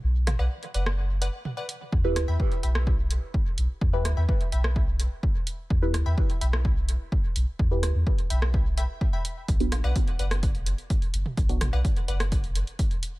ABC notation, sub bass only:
X:1
M:4/4
L:1/16
Q:1/4=127
K:Em
V:1 name="Sub bass" clef=bass
B,,,2 A,,, B,,, z2 F,,,4- F,,, z4 z | E,,2 D,, E,, z2 B,,,4- B,,, z3 B,,, z | E,,2 D,, E,, z2 B,,,4- B,,, z4 z | E,,2 D,, E,, z2 B,,,4- B,,, z3 B,,, z |
E,,2 D,, E,, z2 B,,,4- B,,, z4 z | B,,,2 A,,, B,,, z2 F,,,4- F,,, z3 F,,, z | B,,,2 A,,, B,,, z2 F,,,4- F,,, z4 z |]